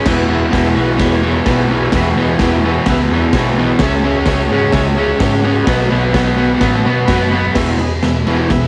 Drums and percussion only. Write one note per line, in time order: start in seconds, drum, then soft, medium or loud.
0.06 kick loud
0.06 snare loud
0.06 crash loud
0.53 kick loud
0.53 snare loud
0.53 open hi-hat medium
0.99 kick loud
0.99 snare loud
0.99 open hi-hat medium
1.46 kick loud
1.46 snare loud
1.46 open hi-hat medium
1.92 kick loud
1.92 snare loud
1.92 open hi-hat medium
2.39 kick loud
2.39 snare loud
2.39 open hi-hat medium
2.86 kick loud
2.86 snare loud
2.86 open hi-hat medium
3.33 kick loud
3.33 snare loud
3.33 open hi-hat medium
3.79 kick loud
3.79 snare loud
3.79 open hi-hat medium
4.26 kick loud
4.26 snare loud
4.26 open hi-hat medium
4.72 kick loud
4.72 snare loud
4.72 open hi-hat medium
5.20 kick loud
5.20 snare loud
5.20 open hi-hat medium
5.67 kick loud
5.67 snare loud
5.67 open hi-hat medium
6.14 kick loud
6.14 snare loud
6.14 open hi-hat medium
6.61 kick loud
6.61 snare loud
6.61 open hi-hat medium
7.08 kick loud
7.08 snare loud
7.08 open hi-hat medium
7.55 kick loud
7.55 snare loud
7.55 crash loud
7.79 ride medium
8.03 snare loud
8.03 ride loud
8.27 ride medium
8.50 kick loud
8.50 snare loud
8.50 ride loud